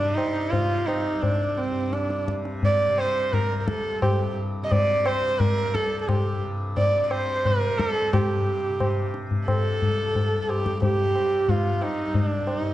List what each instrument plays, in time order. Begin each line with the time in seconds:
Already playing: tanpura C2 G2 C3, sarangi D4
0.15 sarangi D#4, tabla na
0.51 tanpura C3, sarangi F4, tabla tin, tabla ge
0.86 sarangi D#4, tabla na
1.13 tanpura C2
1.22 sarangi D4, tabla tin, tabla ge
1.58 sarangi C4
1.71 tanpura G2
1.93 sarangi D4, tabla te
2.10 tabla te
2.28 tanpura C3, tabla ke
2.45 tabla te
2.63 sarangi D5, tabla tin, tabla ge
2.88 tanpura C3
2.98 sarangi C5, tabla na
3.33 sarangi A#4, tabla tin, tabla ge
3.46 tanpura C2
3.61 sarangi A#4
3.68 sarangi A4, tabla ke
4.02 tanpura G2, sarangi G4, tabla na, tabla ge
4.62 tanpura C3, sarangi D#5
4.72 sarangi D5, tabla tin, tabla ge
5.06 sarangi C5, tabla na
5.21 tanpura C3
5.40 sarangi A#4, tabla tin, tabla ge
5.74 tanpura C2, sarangi A4, tabla ke
6.01 sarangi A4
6.07 sarangi G4, tabla na, tabla ge
6.35 tanpura G2
6.77 sarangi D5, tabla tin, tabla ge
6.92 tanpura C3
7.04 sarangi D5
7.11 sarangi C5, tabla na
7.45 tanpura C3, sarangi A#4, tabla tin, tabla ge
7.80 sarangi A#4, tabla ke
7.91 sarangi A4
8.13 tanpura G2, sarangi G4, tabla na, tabla ge
8.69 tanpura C3
8.80 tabla na, tabla ge
9.14 tabla te
9.26 tanpura C3
9.31 tabla ge
9.48 sarangi A4, tabla na, tabla ge
9.82 tanpura C2, tabla ge
10.15 tabla tin, tabla ge
10.37 tanpura G2
10.42 sarangi A4
10.49 sarangi G4, tabla na
10.66 tabla ke
10.82 sarangi G4, tabla tin, tabla ge
10.94 tanpura C3
11.15 tabla na
11.49 tanpura C3, sarangi F4, tabla tin, tabla ge
11.81 sarangi D#4, tabla na
12.05 tanpura C2
12.14 sarangi D4, tabla tin, tabla ge
12.47 sarangi D#4, tabla na
12.61 tanpura G2